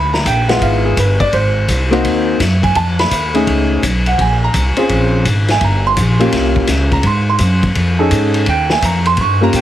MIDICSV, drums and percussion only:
0, 0, Header, 1, 2, 480
1, 0, Start_track
1, 0, Tempo, 356930
1, 1786, Time_signature, 4, 2, 24, 8
1, 12924, End_track
2, 0, Start_track
2, 0, Title_t, "Drums"
2, 186, Note_on_c, 9, 38, 43
2, 321, Note_off_c, 9, 38, 0
2, 344, Note_on_c, 9, 36, 20
2, 347, Note_on_c, 9, 44, 52
2, 347, Note_on_c, 9, 51, 62
2, 478, Note_off_c, 9, 36, 0
2, 481, Note_off_c, 9, 44, 0
2, 481, Note_off_c, 9, 51, 0
2, 662, Note_on_c, 9, 51, 48
2, 664, Note_on_c, 9, 38, 46
2, 796, Note_off_c, 9, 51, 0
2, 799, Note_off_c, 9, 38, 0
2, 823, Note_on_c, 9, 36, 23
2, 829, Note_on_c, 9, 51, 63
2, 957, Note_off_c, 9, 36, 0
2, 964, Note_off_c, 9, 51, 0
2, 1302, Note_on_c, 9, 36, 19
2, 1307, Note_on_c, 9, 44, 54
2, 1307, Note_on_c, 9, 51, 72
2, 1437, Note_off_c, 9, 36, 0
2, 1441, Note_off_c, 9, 44, 0
2, 1441, Note_off_c, 9, 51, 0
2, 1615, Note_on_c, 9, 36, 52
2, 1617, Note_on_c, 9, 51, 49
2, 1750, Note_off_c, 9, 36, 0
2, 1751, Note_off_c, 9, 51, 0
2, 1780, Note_on_c, 9, 36, 16
2, 1785, Note_on_c, 9, 51, 54
2, 1915, Note_off_c, 9, 36, 0
2, 1919, Note_off_c, 9, 51, 0
2, 2263, Note_on_c, 9, 36, 26
2, 2265, Note_on_c, 9, 44, 50
2, 2265, Note_on_c, 9, 51, 71
2, 2398, Note_off_c, 9, 36, 0
2, 2400, Note_off_c, 9, 44, 0
2, 2400, Note_off_c, 9, 51, 0
2, 2590, Note_on_c, 9, 51, 45
2, 2725, Note_off_c, 9, 51, 0
2, 2746, Note_on_c, 9, 36, 21
2, 2751, Note_on_c, 9, 51, 65
2, 2881, Note_off_c, 9, 36, 0
2, 2885, Note_off_c, 9, 51, 0
2, 3224, Note_on_c, 9, 36, 23
2, 3228, Note_on_c, 9, 44, 53
2, 3228, Note_on_c, 9, 51, 68
2, 3231, Note_on_c, 9, 38, 38
2, 3359, Note_off_c, 9, 36, 0
2, 3363, Note_off_c, 9, 44, 0
2, 3363, Note_off_c, 9, 51, 0
2, 3366, Note_off_c, 9, 38, 0
2, 3539, Note_on_c, 9, 36, 50
2, 3544, Note_on_c, 9, 51, 46
2, 3674, Note_off_c, 9, 36, 0
2, 3679, Note_off_c, 9, 51, 0
2, 3702, Note_on_c, 9, 51, 57
2, 3703, Note_on_c, 9, 36, 21
2, 3836, Note_off_c, 9, 51, 0
2, 3838, Note_off_c, 9, 36, 0
2, 4023, Note_on_c, 9, 51, 48
2, 4026, Note_on_c, 9, 38, 56
2, 4158, Note_off_c, 9, 51, 0
2, 4160, Note_off_c, 9, 38, 0
2, 4185, Note_on_c, 9, 36, 24
2, 4186, Note_on_c, 9, 44, 63
2, 4186, Note_on_c, 9, 51, 77
2, 4319, Note_off_c, 9, 36, 0
2, 4320, Note_off_c, 9, 44, 0
2, 4320, Note_off_c, 9, 51, 0
2, 4500, Note_on_c, 9, 51, 48
2, 4634, Note_off_c, 9, 51, 0
2, 4665, Note_on_c, 9, 36, 20
2, 4669, Note_on_c, 9, 51, 62
2, 4799, Note_off_c, 9, 36, 0
2, 4803, Note_off_c, 9, 51, 0
2, 5146, Note_on_c, 9, 36, 22
2, 5152, Note_on_c, 9, 44, 54
2, 5152, Note_on_c, 9, 51, 70
2, 5281, Note_off_c, 9, 36, 0
2, 5286, Note_off_c, 9, 44, 0
2, 5286, Note_off_c, 9, 51, 0
2, 5462, Note_on_c, 9, 51, 44
2, 5596, Note_off_c, 9, 51, 0
2, 5626, Note_on_c, 9, 36, 22
2, 5632, Note_on_c, 9, 51, 55
2, 5760, Note_off_c, 9, 36, 0
2, 5766, Note_off_c, 9, 51, 0
2, 6103, Note_on_c, 9, 36, 25
2, 6103, Note_on_c, 9, 44, 59
2, 6103, Note_on_c, 9, 51, 66
2, 6237, Note_off_c, 9, 44, 0
2, 6237, Note_off_c, 9, 51, 0
2, 6238, Note_off_c, 9, 36, 0
2, 6408, Note_on_c, 9, 51, 49
2, 6543, Note_off_c, 9, 51, 0
2, 6581, Note_on_c, 9, 36, 22
2, 6581, Note_on_c, 9, 51, 63
2, 6715, Note_off_c, 9, 51, 0
2, 6716, Note_off_c, 9, 36, 0
2, 7065, Note_on_c, 9, 36, 21
2, 7065, Note_on_c, 9, 44, 52
2, 7065, Note_on_c, 9, 51, 66
2, 7199, Note_off_c, 9, 36, 0
2, 7199, Note_off_c, 9, 44, 0
2, 7199, Note_off_c, 9, 51, 0
2, 7375, Note_on_c, 9, 51, 45
2, 7377, Note_on_c, 9, 38, 44
2, 7509, Note_off_c, 9, 51, 0
2, 7512, Note_off_c, 9, 38, 0
2, 7541, Note_on_c, 9, 51, 59
2, 7544, Note_on_c, 9, 36, 22
2, 7676, Note_off_c, 9, 51, 0
2, 7678, Note_off_c, 9, 36, 0
2, 8023, Note_on_c, 9, 44, 65
2, 8023, Note_on_c, 9, 51, 73
2, 8028, Note_on_c, 9, 36, 25
2, 8157, Note_off_c, 9, 44, 0
2, 8157, Note_off_c, 9, 51, 0
2, 8163, Note_off_c, 9, 36, 0
2, 8344, Note_on_c, 9, 51, 48
2, 8478, Note_off_c, 9, 51, 0
2, 8505, Note_on_c, 9, 51, 70
2, 8508, Note_on_c, 9, 36, 21
2, 8508, Note_on_c, 9, 38, 40
2, 8640, Note_off_c, 9, 51, 0
2, 8642, Note_off_c, 9, 36, 0
2, 8642, Note_off_c, 9, 38, 0
2, 8822, Note_on_c, 9, 36, 57
2, 8956, Note_off_c, 9, 36, 0
2, 8975, Note_on_c, 9, 44, 63
2, 8975, Note_on_c, 9, 51, 69
2, 8978, Note_on_c, 9, 38, 38
2, 8985, Note_on_c, 9, 36, 21
2, 9110, Note_off_c, 9, 44, 0
2, 9110, Note_off_c, 9, 51, 0
2, 9112, Note_off_c, 9, 38, 0
2, 9119, Note_off_c, 9, 36, 0
2, 9300, Note_on_c, 9, 51, 48
2, 9302, Note_on_c, 9, 36, 52
2, 9434, Note_off_c, 9, 51, 0
2, 9437, Note_off_c, 9, 36, 0
2, 9454, Note_on_c, 9, 51, 59
2, 9465, Note_on_c, 9, 36, 20
2, 9589, Note_off_c, 9, 51, 0
2, 9599, Note_off_c, 9, 36, 0
2, 9932, Note_on_c, 9, 44, 57
2, 9932, Note_on_c, 9, 51, 70
2, 9945, Note_on_c, 9, 36, 25
2, 10066, Note_off_c, 9, 44, 0
2, 10066, Note_off_c, 9, 51, 0
2, 10079, Note_off_c, 9, 36, 0
2, 10259, Note_on_c, 9, 51, 47
2, 10262, Note_on_c, 9, 36, 51
2, 10394, Note_off_c, 9, 51, 0
2, 10396, Note_off_c, 9, 36, 0
2, 10426, Note_on_c, 9, 51, 66
2, 10427, Note_on_c, 9, 36, 25
2, 10561, Note_off_c, 9, 51, 0
2, 10562, Note_off_c, 9, 36, 0
2, 10904, Note_on_c, 9, 44, 60
2, 10904, Note_on_c, 9, 51, 70
2, 10906, Note_on_c, 9, 36, 19
2, 11038, Note_off_c, 9, 44, 0
2, 11038, Note_off_c, 9, 51, 0
2, 11041, Note_off_c, 9, 36, 0
2, 11217, Note_on_c, 9, 51, 51
2, 11351, Note_off_c, 9, 51, 0
2, 11379, Note_on_c, 9, 51, 63
2, 11384, Note_on_c, 9, 36, 17
2, 11513, Note_off_c, 9, 51, 0
2, 11519, Note_off_c, 9, 36, 0
2, 11695, Note_on_c, 9, 38, 56
2, 11829, Note_off_c, 9, 38, 0
2, 11865, Note_on_c, 9, 36, 27
2, 11866, Note_on_c, 9, 44, 63
2, 11866, Note_on_c, 9, 51, 74
2, 11999, Note_off_c, 9, 36, 0
2, 12000, Note_off_c, 9, 44, 0
2, 12000, Note_off_c, 9, 51, 0
2, 12178, Note_on_c, 9, 51, 47
2, 12312, Note_off_c, 9, 51, 0
2, 12329, Note_on_c, 9, 51, 68
2, 12340, Note_on_c, 9, 36, 26
2, 12464, Note_off_c, 9, 51, 0
2, 12474, Note_off_c, 9, 36, 0
2, 12813, Note_on_c, 9, 44, 58
2, 12813, Note_on_c, 9, 51, 73
2, 12821, Note_on_c, 9, 36, 24
2, 12924, Note_off_c, 9, 36, 0
2, 12924, Note_off_c, 9, 44, 0
2, 12924, Note_off_c, 9, 51, 0
2, 12924, End_track
0, 0, End_of_file